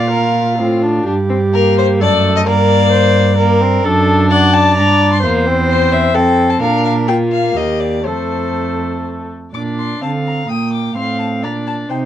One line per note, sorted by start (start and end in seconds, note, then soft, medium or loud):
0.00 0.61 A#2 medium
0.00 0.60 F4 medium
0.00 1.05 F5 medium
0.10 0.57 A#4 medium
0.58 1.06 A2 medium
0.58 0.84 C4 medium
0.58 1.05 F4 medium
0.82 1.06 D4 medium
1.06 2.02 G2 medium
1.06 1.14 D4 medium
1.06 2.02 G4 medium
1.29 1.37 C4 medium
1.53 2.02 A#3 medium
1.53 1.75 A#4 loud
1.78 1.86 C5 loud
2.00 2.46 F#2 medium
2.00 2.48 A3 medium
2.00 2.45 A4 medium
2.00 2.35 D5 loud
2.36 2.41 D#5 loud
2.46 3.82 G2 loud
2.46 3.39 A#3 medium
2.46 2.91 A#4 medium
2.46 3.82 D5 loud
2.92 3.37 C5 loud
3.37 3.63 A#3 medium
3.37 3.87 A#4 loud
3.61 3.86 C4 medium
3.85 4.80 F#2 loud
3.85 4.77 D4 medium
3.85 4.30 A4 loud
4.31 5.21 D5 loud
4.31 4.55 F#5 loud
4.53 4.76 A5 loud
4.77 5.25 G2 medium
4.77 5.22 D4 medium
4.77 5.10 A#5 loud
5.12 5.23 C6 medium
5.23 6.17 E2 medium
5.23 5.48 A#3 medium
5.23 6.16 C5 loud
5.47 6.14 C4 medium
5.70 5.94 C5 loud
5.92 6.16 E5 loud
6.14 6.60 F2 medium
6.14 6.62 C4 medium
6.14 6.61 A4 medium
6.14 6.52 G5 loud
6.50 6.61 A5 medium
6.61 7.54 A#2 medium
6.61 7.09 D4 medium
6.61 7.10 A#4 medium
6.61 6.84 F5 loud
6.85 6.93 F5 loud
7.07 8.05 A#3 medium
7.07 7.56 F4 medium
7.07 7.16 G5 loud
7.32 7.58 F5 medium
7.56 8.08 D#2 medium
7.56 8.07 G4 medium
7.56 7.82 D#5 medium
7.80 8.06 D5 medium
8.05 9.34 F2 medium
8.05 9.31 A3 medium
8.05 9.29 A4 medium
8.05 9.04 C5 medium
9.53 9.98 A#2 medium
9.53 10.03 D4 soft
9.53 10.03 D5 soft
9.53 9.62 D6 medium
9.79 10.02 C6 medium
10.01 10.48 D3 soft
10.01 10.48 C4 soft
10.01 10.51 F5 soft
10.01 10.11 A5 medium
10.26 10.49 A#5 medium
10.48 10.95 A#2 soft
10.48 10.97 A#3 soft
10.48 10.95 G5 medium
10.48 10.72 D#6 medium
10.73 10.96 D6 medium
10.96 11.45 A2 soft
10.96 11.45 C4 soft
10.96 11.45 F5 medium
10.96 11.19 C6 medium
11.20 11.28 A5 medium
11.43 11.90 A#2 soft
11.43 11.92 D4 soft
11.43 11.91 D5 medium
11.43 11.52 A#5 medium
11.67 11.75 A5 medium
11.90 12.05 C3 medium
11.90 12.05 D#4 soft
11.90 12.05 C5 soft
11.90 11.98 G5 medium